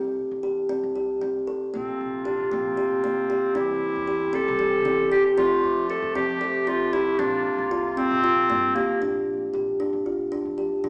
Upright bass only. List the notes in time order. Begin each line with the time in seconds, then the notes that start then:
Already playing: C2
0.31 E2
0.83 C2
1.22 C2
1.75 A#1
2.01 A#1
2.40 A#1
2.53 A#1
3.57 C2
3.96 E2
4.48 C2
4.86 E2
5.38 F2
5.64 F2
6.02 F2
6.15 F2
7.19 A#1
7.58 C2
8.11 A#1
8.50 G2
9.02 A#1
9.54 A#1
9.93 A#2
10.45 F2
10.84 A#2